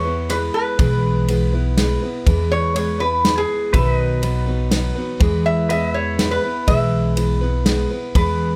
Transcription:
Already playing: upright bass E2, pedal steel guitar B4 E5, resonator guitar played with a steel bar C#5
0.04 steel-string acoustic guitar B3 E4 B4
0.29 steel-string acoustic guitar G#3 B3 E4 B4, resonator guitar played with a steel bar B4, cross-stick, ride
0.54 resonator guitar played with a steel bar B4
0.79 upright bass B1, steel-string acoustic guitar E3 G#3 B3 E4 B4, kick, ride
1.28 steel-string acoustic guitar G#3 B3 E4 B4, ride
1.52 steel-string acoustic guitar B3 E4 B4
1.77 steel-string acoustic guitar G#3 B3 E4 B4, snare, ride
2.02 steel-string acoustic guitar B3 E4 B4
2.26 upright bass E2, steel-string acoustic guitar E3 G#3 B3 E4 B4, kick, ride
2.52 resonator guitar played with a steel bar C#5
2.75 steel-string acoustic guitar G#3 B3 E4 B4, resonator guitar played with a steel bar C#5, ride
2.99 steel-string acoustic guitar B3 E4 B4, resonator guitar played with a steel bar B4
3.24 steel-string acoustic guitar G#3 B3 E4 B4, snare, ride
3.38 resonator guitar played with a steel bar G#4
3.73 upright bass B1, steel-string acoustic guitar B2 D#3 F#3 B3 D#4 B4, pedal steel guitar B4 E5, resonator guitar played with a steel bar B4, kick, ride
3.95 pedal steel guitar D#5
4.22 steel-string acoustic guitar F#3 B3 D#4 B4, ride
4.46 steel-string acoustic guitar F#3 B3 D#4 B4
4.71 steel-string acoustic guitar F#3 B3 D#4 B4, snare, ride
4.95 steel-string acoustic guitar F#3 B3 D#4 B4
5.20 upright bass E2, steel-string acoustic guitar E3 G#3 B3 E4 B4, kick, ride
5.46 resonator guitar played with a steel bar E5
5.69 steel-string acoustic guitar G#3 B3 E4 B4, pedal steel guitar B4 D#5, resonator guitar played with a steel bar E5, ride
5.91 resonator guitar played with a steel bar C#5, pedal steel guitar E5
6.18 steel-string acoustic guitar G#3 B3 E4 B4, snare, ride
6.31 resonator guitar played with a steel bar B4
6.43 steel-string acoustic guitar B3 E4 B4
6.67 upright bass B1, steel-string acoustic guitar E3 G#3 B3 E4 B4, resonator guitar played with a steel bar E5, kick, ride
7.16 steel-string acoustic guitar G#3 B3 E4 B4, ride
7.41 steel-string acoustic guitar B3 E4 B4
7.65 steel-string acoustic guitar G#3 B3 E4 B4, snare, ride
7.90 steel-string acoustic guitar B3 E4 B4
8.15 upright bass E2, steel-string acoustic guitar E3 G#3 B3 E4 B4, resonator guitar played with a steel bar B4, kick, ride

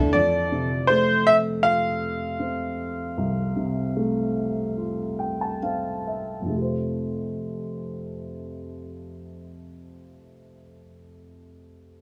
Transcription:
Already playing: fm bass E2, clean electric guitar D3 E3 D4 A4, ambient pad A3, upright piano A3 D4 E4 A5, violin section E5
0.13 upright piano F2, grand piano D5
0.52 upright piano C3
0.87 upright piano A3, grand piano C5
1.27 grand piano E5
1.63 upright piano F4, grand piano F5
2.40 upright piano C4
3.17 upright piano C2
3.56 upright piano C3
3.97 upright piano A3
4.77 upright piano F4
5.19 upright piano G5
5.41 upright piano A5
5.63 upright piano C4 F5
6.07 upright piano E5
6.42 upright piano F2
6.46 upright piano C3 A3
6.54 upright piano F4 G4
6.62 upright piano C5

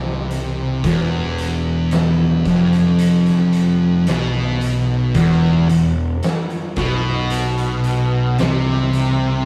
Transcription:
Already playing: picked electric bass C2, distorted electric guitar C3
0.31 closed hi-hat
0.84 picked electric bass E1, distorted electric guitar E2, kick, closed hi-hat
1.38 closed hi-hat
1.91 snare, closed hi-hat
2.46 picked electric bass F1, distorted electric guitar F2, kick, closed hi-hat
2.72 closed hi-hat
2.99 closed hi-hat
3.26 snare, closed hi-hat
3.53 closed hi-hat
4.07 picked electric bass B1, distorted electric guitar B2, snare, closed hi-hat
4.61 closed hi-hat
5.15 picked electric bass E1, distorted electric guitar E2, kick, closed hi-hat
5.69 picked electric bass E1, distorted electric guitar E2, closed hi-hat
6.23 snare, closed hi-hat
6.50 closed hi-hat
6.76 picked electric bass B1, distorted electric guitar B2, kick, closed hi-hat
7.30 closed hi-hat
7.58 closed hi-hat
7.84 closed hi-hat
8.38 picked electric bass C2, distorted electric guitar C3, snare, closed hi-hat
8.93 closed hi-hat

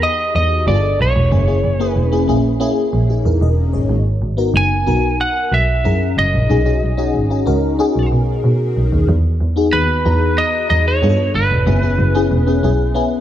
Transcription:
Already playing: fm electric piano B3 D#4 F#4 G4 G#4
0.03 lead electric guitar D#5
0.35 double bass E2, lead electric guitar D#5
0.67 double bass G1, fm electric piano B3 D4 F4 G#4, lead electric guitar D5
0.74 fm electric piano A4
1.00 double bass B1, lead electric guitar C#5
1.16 double bass E1
1.31 double bass F#1, fm electric piano A#3 C#4 E4 G#4
1.47 fm electric piano A#3 C#4 E4 G#4
1.64 double bass F#1
1.79 fm electric piano A#3 C#4 E4 G#4
1.86 lead electric guitar B4
1.96 double bass E1
2.12 fm electric piano A#3 C#4 E4 G#4
2.28 double bass A#1, fm electric piano A#3 C#4 E4 G#4
2.60 fm electric piano A#3 C#4 E4 G#4
2.93 double bass A#1
3.10 fm electric piano D#4 G#4
3.25 double bass E2, fm electric piano E4 A#4
3.41 double bass E1, fm electric piano A#4 D#5
3.73 double bass G#1, fm electric piano G#4 C#5
3.89 double bass G#1
4.22 double bass G#1
4.37 fm electric piano B3 D#4 F#4 A#4
4.54 double bass F#1, lead electric guitar G#5
4.86 double bass B1, fm electric piano B3 D#4 F#4 A#4
5.21 lead electric guitar F#5
5.52 double bass B1, lead electric guitar E5
5.84 double bass F#2, fm electric piano C#4 E4 G#4 A#4
6.17 double bass F#1, lead electric guitar D#5
6.34 double bass A#1
6.49 double bass B1, fm electric piano C#4 D#4 F#4 G#4
6.65 fm electric piano C#4 D#4 F#4 G#4
6.83 double bass B1
6.97 fm electric piano C#4 D#4 F#4 G#4
7.14 double bass G#1
7.30 fm electric piano C#4 D#4 F#4 G#4
7.46 double bass C#2, fm electric piano C#4 D#4 F#4 A#4
7.79 fm electric piano C#4 D#4 F#4 G#4
7.96 double bass B1
8.12 double bass B2
8.44 double bass B2
8.76 double bass B1
8.92 double bass D#2
9.09 double bass E2
9.41 double bass E2
9.56 fm electric piano B3 D#4 F#4 G#4
9.73 double bass D#2, lead electric guitar B4
10.05 double bass E2, fm electric piano B3 D#4 F#4 A#5
10.38 lead electric guitar D#5
10.70 double bass E2, lead electric guitar D#5
10.88 lead electric guitar C#5
11.02 double bass G2, fm electric piano B3 D4 F4 G#4
11.09 fm electric piano A4
11.35 double bass G1, lead electric guitar B4
11.51 double bass E1
11.66 double bass F#1, fm electric piano B3 C#4 E4 G#4
11.82 fm electric piano B3 C#4 E4 G#4
11.99 double bass F#1
12.14 fm electric piano B3 C#4 E4 G#4
12.31 double bass E1
12.46 fm electric piano B3 C#4 E4 G#4
12.63 double bass B1, fm electric piano B3 C#4 E4 G#4
12.94 fm electric piano B3 C#4 E4 G#4

